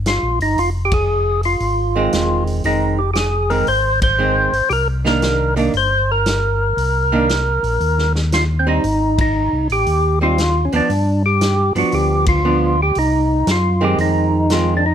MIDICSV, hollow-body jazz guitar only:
0, 0, Header, 1, 2, 480
1, 0, Start_track
1, 0, Key_signature, -3, "minor"
1, 0, Tempo, 515464
1, 541, Time_signature, 4, 2, 24, 8
1, 13917, End_track
2, 0, Start_track
2, 0, Title_t, "Hollow-body jazz guitar"
2, 0, Program_c, 0, 26
2, 1821, Note_on_c, 0, 51, 59
2, 1828, Note_on_c, 0, 56, 61
2, 1832, Note_on_c, 0, 60, 67
2, 2431, Note_off_c, 0, 51, 0
2, 2434, Note_off_c, 0, 56, 0
2, 2436, Note_off_c, 0, 60, 0
2, 2467, Note_on_c, 0, 51, 45
2, 2470, Note_on_c, 0, 56, 45
2, 2476, Note_on_c, 0, 60, 47
2, 2754, Note_off_c, 0, 51, 0
2, 2756, Note_off_c, 0, 56, 0
2, 2758, Note_off_c, 0, 60, 0
2, 3260, Note_on_c, 0, 51, 49
2, 3262, Note_on_c, 0, 56, 55
2, 3267, Note_on_c, 0, 60, 53
2, 3406, Note_off_c, 0, 51, 0
2, 3407, Note_off_c, 0, 56, 0
2, 3410, Note_off_c, 0, 60, 0
2, 3899, Note_on_c, 0, 51, 54
2, 3901, Note_on_c, 0, 56, 54
2, 3910, Note_on_c, 0, 60, 63
2, 4191, Note_off_c, 0, 51, 0
2, 4192, Note_off_c, 0, 56, 0
2, 4197, Note_off_c, 0, 60, 0
2, 4699, Note_on_c, 0, 51, 58
2, 4705, Note_on_c, 0, 58, 56
2, 4712, Note_on_c, 0, 62, 56
2, 5152, Note_off_c, 0, 51, 0
2, 5155, Note_off_c, 0, 58, 0
2, 5158, Note_off_c, 0, 62, 0
2, 5178, Note_on_c, 0, 51, 58
2, 5182, Note_on_c, 0, 58, 67
2, 5191, Note_on_c, 0, 62, 66
2, 5327, Note_off_c, 0, 51, 0
2, 5329, Note_off_c, 0, 58, 0
2, 5333, Note_off_c, 0, 62, 0
2, 6633, Note_on_c, 0, 58, 71
2, 6634, Note_on_c, 0, 51, 63
2, 6642, Note_on_c, 0, 62, 63
2, 6775, Note_off_c, 0, 58, 0
2, 6776, Note_off_c, 0, 51, 0
2, 6780, Note_off_c, 0, 62, 0
2, 8070, Note_on_c, 0, 55, 56
2, 8072, Note_on_c, 0, 60, 67
2, 8079, Note_on_c, 0, 63, 65
2, 8215, Note_off_c, 0, 55, 0
2, 8216, Note_off_c, 0, 60, 0
2, 8219, Note_off_c, 0, 63, 0
2, 9508, Note_on_c, 0, 55, 65
2, 9516, Note_on_c, 0, 60, 70
2, 9521, Note_on_c, 0, 63, 63
2, 9654, Note_off_c, 0, 55, 0
2, 9657, Note_off_c, 0, 60, 0
2, 9660, Note_off_c, 0, 63, 0
2, 9989, Note_on_c, 0, 53, 65
2, 9992, Note_on_c, 0, 59, 76
2, 10000, Note_on_c, 0, 62, 70
2, 10134, Note_off_c, 0, 53, 0
2, 10136, Note_off_c, 0, 59, 0
2, 10139, Note_off_c, 0, 62, 0
2, 10945, Note_on_c, 0, 53, 50
2, 10946, Note_on_c, 0, 59, 55
2, 10956, Note_on_c, 0, 62, 54
2, 11554, Note_off_c, 0, 53, 0
2, 11555, Note_off_c, 0, 59, 0
2, 11560, Note_off_c, 0, 62, 0
2, 11593, Note_on_c, 0, 53, 58
2, 11593, Note_on_c, 0, 59, 56
2, 11601, Note_on_c, 0, 62, 55
2, 11879, Note_off_c, 0, 53, 0
2, 11879, Note_off_c, 0, 59, 0
2, 11883, Note_off_c, 0, 62, 0
2, 12859, Note_on_c, 0, 51, 70
2, 12863, Note_on_c, 0, 56, 63
2, 12871, Note_on_c, 0, 60, 70
2, 13467, Note_off_c, 0, 51, 0
2, 13469, Note_off_c, 0, 56, 0
2, 13473, Note_off_c, 0, 60, 0
2, 13512, Note_on_c, 0, 51, 46
2, 13519, Note_on_c, 0, 56, 49
2, 13527, Note_on_c, 0, 60, 47
2, 13794, Note_off_c, 0, 51, 0
2, 13798, Note_off_c, 0, 56, 0
2, 13802, Note_off_c, 0, 60, 0
2, 13917, End_track
0, 0, End_of_file